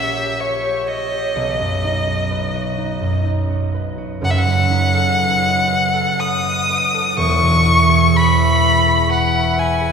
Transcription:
0.00 1.39 A#1 medium
0.00 1.39 A#2 soft
0.00 1.40 C#4 soft
0.00 0.15 G4 soft
0.00 0.39 C#5 soft
0.00 0.42 E5 medium
0.16 0.62 G4 soft
0.40 0.87 C#5 soft
0.40 0.89 C#5 medium
0.63 1.10 G4 soft
0.87 1.39 C#5 medium
0.87 3.26 D#5 medium
1.11 1.39 G4 soft
1.36 4.27 B1 medium
1.60 3.00 F#2 soft
1.84 2.76 D#4 soft
2.07 2.54 F#4 soft
2.31 3.73 B4 soft
2.55 3.48 F#4 soft
2.77 3.23 D#4 soft
3.01 4.21 F#2 soft
3.25 4.69 D#4 soft
3.50 3.97 F#4 soft
3.74 5.17 B4 soft
3.98 7.22 F#4 soft
4.21 7.21 F#1 medium
4.21 7.22 F#2 medium
4.21 4.32 F#5 medium
4.30 4.39 E5 medium
4.38 6.21 F#5 loud
4.47 7.22 F#3 soft
4.70 7.22 D#4 soft
4.94 5.92 A4 soft
5.19 5.66 B4 soft
5.42 6.44 D#5 soft
5.68 6.19 B4 soft
5.93 6.93 A4 soft
6.19 6.69 B4 medium
6.19 7.18 D#6 loud
6.46 7.22 D#5 medium
6.70 8.14 B4 medium
6.94 7.22 A4 soft
7.17 9.92 E1 medium
7.17 9.92 E2 medium
7.17 8.18 C#6 loud
7.43 9.92 B2 soft
7.65 9.92 E4 soft
7.89 8.86 G#4 soft
8.15 8.63 B4 soft
8.15 9.11 B5 loud
8.39 9.34 E5 soft
8.64 9.09 B4 soft
8.87 9.80 G#4 soft
9.10 9.56 B4 soft
9.10 9.61 F#5 medium
9.35 9.92 E5 soft
9.57 9.92 B4 medium
9.57 9.92 G#5 medium
9.81 9.92 G#4 soft

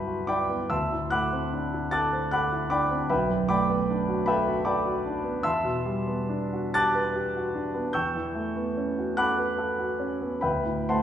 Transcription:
0.00 0.67 C2 soft
0.00 0.73 G2 soft
0.00 0.73 F#3 soft
0.00 0.49 B3 soft
0.00 0.28 E4 soft
0.00 0.07 F#4 soft
0.00 0.25 B4 soft
0.00 0.73 C5 medium
0.00 0.28 D5 soft
0.00 0.25 E5 medium
0.00 0.73 F#5 medium
0.00 0.29 G5 soft
0.00 0.71 A5 medium
0.00 0.29 B5 medium
0.00 0.70 C6 medium
0.00 0.27 D6 medium
0.07 0.41 F#4 soft
0.27 0.62 E4 soft
0.27 0.68 D5 medium
0.27 0.68 G5 medium
0.27 0.68 B5 soft
0.27 0.70 D6 medium
0.49 0.71 B3 soft
0.70 3.06 D2 soft
0.70 1.09 E5 soft
0.70 1.10 A5 soft
0.70 1.10 C6 soft
0.70 1.12 E6 medium
0.92 1.25 A2 soft
1.10 1.44 A3 soft
1.10 1.88 F#5 medium
1.10 1.89 B5 medium
1.10 1.89 D6 medium
1.10 1.92 F#6 medium
1.33 1.65 C4 soft
1.53 1.85 D4 soft
1.74 2.05 E4 soft
1.91 2.24 A4 soft
1.91 2.29 A5 medium
1.91 2.29 D6 medium
1.91 2.29 F#6 medium
1.91 2.31 A6 medium
2.12 2.44 C5 soft
2.31 2.63 A4 soft
2.31 2.69 F#5 medium
2.31 2.68 B5 medium
2.31 2.69 D6 medium
2.31 2.70 F#6 medium
2.52 2.83 E4 soft
2.70 3.02 D4 soft
2.70 3.08 D5 medium
2.70 3.08 G5 medium
2.70 3.08 B5 medium
2.70 3.10 D6 medium
2.91 3.11 C4 soft
3.09 5.40 B1 soft
3.09 3.47 B4 medium
3.09 3.47 E5 medium
3.09 3.47 G5 soft
3.09 3.48 B5 medium
3.29 3.62 F#2 soft
3.49 3.81 A3 soft
3.49 4.23 D5 medium
3.49 4.23 G5 medium
3.49 4.23 B5 medium
3.49 4.27 D6 medium
3.69 4.00 B3 soft
3.90 4.20 D4 soft
4.08 4.39 F#4 soft
4.26 4.59 A4 soft
4.26 4.64 B4 medium
4.26 4.64 E5 medium
4.26 4.64 G5 medium
4.26 4.64 B5 medium
4.47 4.78 F#4 soft
4.65 4.97 A4 soft
4.65 5.02 D5 medium
4.65 5.03 G5 soft
4.65 5.02 B5 medium
4.65 5.05 D6 medium
4.85 5.17 F#4 soft
5.06 5.37 D4 soft
5.24 5.44 B3 soft
5.43 7.90 E2 soft
5.43 6.71 E5 medium
5.43 6.71 A5 medium
5.43 6.71 C6 medium
5.43 6.75 E6 medium
5.63 5.98 B2 soft
5.86 6.21 G3 soft
6.07 6.44 B3 soft
6.29 6.66 D4 soft
6.53 6.88 F#4 soft
6.74 7.08 G4 soft
6.74 7.90 A5 medium
6.74 7.90 D6 medium
6.74 7.90 F#6 medium
6.74 7.94 A6 loud
6.94 7.27 B4 soft
7.16 7.47 G4 soft
7.36 7.67 F#4 soft
7.55 7.86 D4 soft
7.74 7.94 B3 soft
7.93 10.37 E2 soft
7.93 9.12 G5 medium
7.93 9.12 C#6 medium
7.93 9.12 E6 medium
7.93 9.16 G6 medium
8.15 8.48 E3 soft
8.35 8.68 A3 soft
8.56 8.88 B3 soft
8.77 9.09 C#4 soft
8.98 9.29 F#4 soft
9.17 9.49 A4 soft
9.17 10.38 F#5 medium
9.17 10.38 B5 medium
9.17 10.38 D6 medium
9.17 10.41 F#6 medium
9.38 9.69 B4 soft
9.58 9.90 A4 soft
9.78 10.11 F#4 soft
10.00 10.33 C#4 soft
10.21 10.42 B3 soft
10.41 11.03 D2 soft
10.41 10.85 B4 soft
10.41 10.85 E5 soft
10.41 10.85 G5 soft
10.41 10.88 B5 medium
10.65 11.03 A2 soft
10.89 11.03 A3 soft
10.89 11.03 C5 medium
10.89 11.03 F#5 medium
10.89 11.03 A5 medium
10.89 11.03 C6 medium

